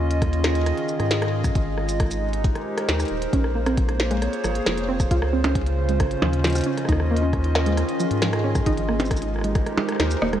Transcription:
Already playing: analog synth bass D#2, ambient pad D#3 C#4 F4 D#5
0.11 closed hi-hat
0.22 ambient pad G#4, kick, cross-stick, closed hi-hat
0.33 closed hi-hat
0.44 cross-stick, snare
0.55 closed hi-hat
0.66 cross-stick, closed hi-hat
0.78 closed hi-hat
0.89 shaker
1.00 analog synth bass G#2, cross-stick, closed hi-hat
1.11 snare, closed hi-hat
1.22 cross-stick, closed hi-hat
1.44 kick, cross-stick, closed hi-hat, shaker
1.55 analog synth bass G#1, ambient pad G#3, kick, closed hi-hat
1.72 ambient pad D#4
1.78 cross-stick
1.89 closed hi-hat, shaker
2.00 ambient pad G4, kick, cross-stick, closed hi-hat
2.11 closed hi-hat, shaker
2.33 ambient pad A#4 C5, closed hi-hat
2.44 kick, closed hi-hat
2.55 cross-stick, closed hi-hat
2.78 cross-stick, closed hi-hat
2.89 analog synth bass D#2, snare, closed hi-hat
3.00 cross-stick, closed hi-hat, shaker
3.03 closed hi-hat
3.05 closed hi-hat
3.08 analog synth bass D#1, closed hi-hat
3.22 closed hi-hat
3.33 analog synth bass A#1, ambient pad A#3, synth arpeggio sound C#4, kick, closed hi-hat
3.44 cross-stick
3.55 synth arpeggio sound A#3
3.66 synth arpeggio sound C4, cross-stick, closed hi-hat
3.71 ambient pad F4
3.76 ambient pad C#5, kick, closed hi-hat
3.89 ambient pad G#4, cross-stick, closed hi-hat
4.00 snare
4.11 synth arpeggio sound G#3, closed hi-hat
4.22 cross-stick, closed hi-hat
4.33 closed hi-hat
4.44 analog synth bass G#1, synth arpeggio sound F3, cross-stick, shaker
4.55 closed hi-hat
4.66 analog synth bass F1, synth arpeggio sound F3, cross-stick, snare, closed hi-hat
4.78 closed hi-hat
4.89 synth arpeggio sound C4
5.00 kick, cross-stick, closed hi-hat, shaker
5.11 analog synth bass C#2, ambient pad C#3, synth arpeggio sound F4, kick, closed hi-hat
5.19 ambient pad C#4, cross-stick
5.33 synth arpeggio sound C4
5.44 synth arpeggio sound C#4, cross-stick, closed hi-hat, percussion blips
5.55 kick, closed hi-hat
5.66 closed hi-hat
5.89 synth arpeggio sound G#3, ambient pad D#5, closed hi-hat
6.00 analog synth bass G#1, kick, cross-stick, closed hi-hat
6.11 closed hi-hat
6.22 analog synth bass D#2, synth arpeggio sound F3, cross-stick, percussion blips
6.33 closed hi-hat
6.44 synth arpeggio sound F3, snare, closed hi-hat
6.47 closed hi-hat
6.50 closed hi-hat
6.53 cross-stick, closed hi-hat
6.55 closed hi-hat, shaker
6.58 closed hi-hat
6.61 closed hi-hat
6.64 synth arpeggio sound C#4, closed hi-hat
6.78 cross-stick, closed hi-hat
6.85 analog synth bass D#2, ambient pad D#3, synth arpeggio sound D#4, kick, cross-stick, closed hi-hat
6.92 cross-stick
7.00 cross-stick
7.11 synth arpeggio sound A#3
7.16 closed hi-hat
7.22 synth arpeggio sound C#4
7.33 kick, cross-stick, closed hi-hat
7.44 closed hi-hat
7.55 cross-stick, snare
7.66 synth arpeggio sound G#3, ambient pad G#4, closed hi-hat
7.78 cross-stick, closed hi-hat
7.89 closed hi-hat
8.00 synth arpeggio sound F3, shaker
8.11 analog synth bass G#2, closed hi-hat
8.22 synth arpeggio sound F3, cross-stick, snare, closed hi-hat
8.33 cross-stick, closed hi-hat
8.44 synth arpeggio sound C#4
8.55 kick, cross-stick, shaker
8.66 analog synth bass G#1, ambient pad G#3, synth arpeggio sound D#4, kick, closed hi-hat
8.78 closed hi-hat
8.89 synth arpeggio sound A#3, ambient pad D#4, cross-stick
9.00 synth arpeggio sound C4, closed hi-hat, percussion blips, shaker
9.05 shaker
9.10 ambient pad G4, kick, cross-stick, closed hi-hat, shaker
9.16 shaker
9.22 closed hi-hat
9.36 ambient pad A#4, cross-stick
9.39 cross-stick
9.41 synth arpeggio sound G#3, cross-stick, closed hi-hat
9.46 ambient pad C5
9.55 kick, cross-stick, closed hi-hat
9.66 cross-stick, closed hi-hat
9.77 synth arpeggio sound G#3, percussion blips
9.89 cross-stick, closed hi-hat
9.92 cross-stick
9.96 cross-stick
10.00 analog synth bass D#2, synth arpeggio sound D#4, cross-stick, snare, closed hi-hat
10.07 cross-stick, closed hi-hat, shaker
10.22 analog synth bass D#1, synth arpeggio sound A#3, cross-stick
10.33 synth arpeggio sound G#3, cross-stick, closed hi-hat

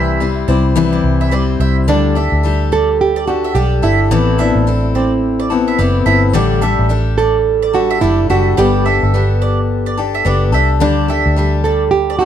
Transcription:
Already playing: fingered electric bass C2, steel-string acoustic guitar C3 E3 G3 C4 E4 C5, mandolin E5
0.20 steel-string acoustic guitar G3 C4 E4 C5
0.48 fingered electric bass C2, steel-string acoustic guitar G3 C4 E4 C5, mandolin D5
0.75 steel-string acoustic guitar C3 E3 G3 C4 E4 C5
0.93 mandolin D5
1.04 fingered electric bass C2
1.21 mandolin E5
1.31 steel-string acoustic guitar G3 C4 E4 C5, mandolin D5
1.60 fingered electric bass C2, mandolin E5
1.87 fingered electric bass D2, steel-string acoustic guitar D3 G3 D4 G4 A4, nylon-string guitar D4, mandolin D5
2.15 steel-string acoustic guitar D4 G4 A4, mandolin E5
2.32 fingered electric bass D2
2.43 steel-string acoustic guitar G3 D4 G4 A4
2.72 nylon-string guitar A4, mandolin D5
3.01 nylon-string guitar G4
3.16 mandolin D5
3.27 steel-string acoustic guitar D4 G4 A4, nylon-string guitar F#4
3.44 mandolin E5
3.55 fingered electric bass B1, steel-string acoustic guitar G3 D4 G4 A4, nylon-string guitar G4, mandolin D5
3.82 fingered electric bass G1, steel-string acoustic guitar D4 G4 A4, nylon-string guitar E4, mandolin E5
4.11 fingered electric bass A1, steel-string acoustic guitar A2 E3 B3 C4 E4 A4, mandolin D5
4.38 steel-string acoustic guitar B3 C4 E4 A4, nylon-string guitar D4, mandolin E5
4.55 fingered electric bass A1
4.67 steel-string acoustic guitar C4 E4 A4
4.95 nylon-string guitar C4, mandolin D5
5.40 mandolin D5
5.50 steel-string acoustic guitar B3 C4 E4 A4
5.68 mandolin E5
5.79 fingered electric bass F#1, steel-string acoustic guitar B3 C4 E4 A4, mandolin D5
6.06 fingered electric bass G1, steel-string acoustic guitar B3 C4 E4 A4, mandolin E5
6.33 fingered electric bass A1, steel-string acoustic guitar A2 D3 G3 D4 G4 A4, mandolin D5
6.61 steel-string acoustic guitar G3 D4 G4 A4, mandolin E5
6.79 fingered electric bass A1
6.89 steel-string acoustic guitar G3 D4 G4 A4
7.18 nylon-string guitar A4, mandolin D5
7.62 mandolin D5
7.73 steel-string acoustic guitar G3 D4 G4 A4, nylon-string guitar F#4
7.90 mandolin E5
8.01 fingered electric bass F#1, steel-string acoustic guitar G3 D4 G4 A4, nylon-string guitar E4, mandolin D5
8.30 fingered electric bass F#1, steel-string acoustic guitar G3 D4 G4 A4, nylon-string guitar F#4, mandolin E5
8.57 fingered electric bass G1, steel-string acoustic guitar G3 B3 D4 G4 A4, nylon-string guitar G4, mandolin D5
8.85 steel-string acoustic guitar D4 G4 A4, mandolin E5
9.03 fingered electric bass G1
9.14 steel-string acoustic guitar B3 D4 G4 A4
9.42 mandolin D5
9.86 mandolin D5
9.97 steel-string acoustic guitar D4 G4 A4
10.15 mandolin E5
10.25 fingered electric bass F#1, steel-string acoustic guitar B3 D4 G4 A4, mandolin D5
10.52 fingered electric bass C2, steel-string acoustic guitar D4 G4 A4, mandolin E5
10.80 fingered electric bass D2, steel-string acoustic guitar D3 G3 D4 G4 A4, nylon-string guitar D4, mandolin D5
11.08 steel-string acoustic guitar D4 G4 A4, mandolin E5
11.26 fingered electric bass D2
11.36 steel-string acoustic guitar G3 D4 G4 A4
11.64 nylon-string guitar A4, mandolin D5
11.91 nylon-string guitar G4
12.10 mandolin D5
12.19 nylon-string guitar F#4, steel-string acoustic guitar G4 A4

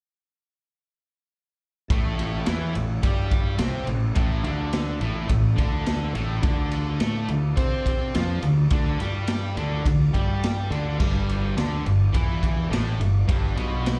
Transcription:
1.88 fingered electric bass A1, distorted electric guitar A2 A3, tonewheel organ E4 A4 C#5, kick, ride
2.19 ride
2.46 fingered electric bass E2, distorted electric guitar E3 E4, snare, ride
2.75 fingered electric bass A1, distorted electric guitar A2, ride
3.03 fingered electric bass G2, distorted electric guitar G3 G4, kick, ride
3.31 kick, ride
3.58 fingered electric bass C2, distorted electric guitar C3 C4, snare, ride
3.87 fingered electric bass A1, distorted electric guitar A2, ride
4.14 fingered electric bass A1, distorted electric guitar A2 A3, tonewheel organ E4 A4, kick, ride
4.44 fingered electric bass D2, distorted electric guitar D3 D4, ride
4.73 snare, ride
5.01 fingered electric bass A1, distorted electric guitar A2 A3, ride
5.29 fingered electric bass A1, distorted electric guitar A2, kick, ride
5.55 fingered electric bass D2, distorted electric guitar D3 D4, kick, ride
5.86 snare, ride
6.14 fingered electric bass A1, distorted electric guitar A2 A3, ride
6.42 fingered electric bass D2, distorted electric guitar D3 D4, tonewheel organ D4 A4 D5, kick, ride
6.71 ride
7.00 fingered electric bass A2, distorted electric guitar A3 A4, snare, ride
7.28 fingered electric bass D2, distorted electric guitar D3, ride
7.56 fingered electric bass C3, distorted electric guitar C4 C5, kick, ride
7.86 kick, ride
8.15 fingered electric bass F2, distorted electric guitar F3 F4, snare, ride
8.42 fingered electric bass D2, distorted electric guitar D3, ride
8.70 fingered electric bass D2, distorted electric guitar D3 D4, tonewheel organ D4 A4 D5, kick, ride
8.99 fingered electric bass G2, distorted electric guitar G3 G4, ride
9.27 snare, ride
9.57 fingered electric bass D2, distorted electric guitar D3 D4, ride
9.85 fingered electric bass D2, distorted electric guitar D3, kick, ride
10.13 fingered electric bass G2, distorted electric guitar G3 G4, kick, ride
10.44 snare, ride
10.70 fingered electric bass D2, distorted electric guitar D3 D4, ride
10.98 fingered electric bass G1, distorted electric guitar G2 G3, tonewheel organ D4 G4 D5, kick, crash
11.29 ride
11.56 fingered electric bass D2, distorted electric guitar D3 D4, snare, ride
11.85 fingered electric bass G1, distorted electric guitar G2, ride
12.13 fingered electric bass E2, distorted electric guitar E3 E4, kick, ride
12.43 kick, ride
12.70 fingered electric bass A1, distorted electric guitar A2 A3, snare, ride
12.99 fingered electric bass G1, distorted electric guitar G2, ride
13.28 fingered electric bass G1, distorted electric guitar G2 G3, tonewheel organ D4 G4, kick, ride
13.55 fingered electric bass B1, distorted electric guitar B2 B3, ride
13.86 snare, ride

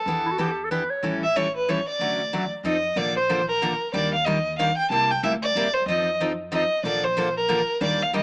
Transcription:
Already playing: violin A4
0.06 upright bass E2, steel-string acoustic guitar E3 B3 D4 G4
0.26 clarinet E4
0.32 clarinet F#4
0.38 steel-string acoustic guitar E3 B3 D4 G4, clarinet G4
0.64 clarinet A4
0.71 steel-string acoustic guitar E3 B3 D4 G4, clarinet B4
0.90 clarinet C#5
1.03 upright bass A1, steel-string acoustic guitar E3 G3 C#4 E4 A4
1.24 violin E5
1.36 steel-string acoustic guitar E3 G3 C#4 E4 A4, violin C#5
1.56 violin B4
1.69 steel-string acoustic guitar E3 G3 C#4 E4 A4, violin C#5
1.88 violin D5
1.99 upright bass D2, steel-string acoustic guitar D3 F#3 A3 C#4 F#4
2.33 steel-string acoustic guitar D3 F#3 A3 C#4 F#4
2.64 upright bass F2, steel-string acoustic guitar F3 C4 D#4 A4, violin D#5
2.96 upright bass A#1, steel-string acoustic guitar D3 F3 A#3 D4 A4, violin D5
3.17 violin C5
3.29 steel-string acoustic guitar D3 F3 A#3 D4 A4
3.49 violin A#4
3.62 steel-string acoustic guitar D3 F3 A#3 D4 A4
3.93 upright bass D#2, steel-string acoustic guitar D#3 G3 A#3 D4 G4, violin D5
4.14 violin F5
4.25 steel-string acoustic guitar D#3 G3 A#3 D4 G4, violin D#5
4.58 steel-string acoustic guitar D#3 G3 A#3 D4 G4, violin F5
4.77 violin G5
4.90 upright bass C2, steel-string acoustic guitar C3 G3 A#3 E4 G4, violin A5
5.11 violin G5
5.23 upright bass D2, steel-string acoustic guitar C3 G3 A#3 E4 G4, violin E5
5.43 violin D5
5.55 upright bass E2, steel-string acoustic guitar C3 G3 A#3 E4 G4
5.74 violin C5
5.86 upright bass F2, steel-string acoustic guitar F3 C4 D#4, violin D#5
5.90 steel-string acoustic guitar A4
6.20 steel-string acoustic guitar F3 C4 D#4 A4
6.52 steel-string acoustic guitar F3 C4 D#4 A4, violin D#5
6.83 upright bass A#1, steel-string acoustic guitar D3 F3 A#3 D4 A4, violin D5
7.04 violin C5
7.17 steel-string acoustic guitar D3 F3 A#3 D4 A4
7.37 violin A#4
7.48 steel-string acoustic guitar D3 F3 A#3 D4 A4
7.81 upright bass D#2, steel-string acoustic guitar D#3 G3 A#3 D4 G4, violin D5
8.03 violin F5
8.13 steel-string acoustic guitar D#3 G3 A#3 D4 G4, violin D#5

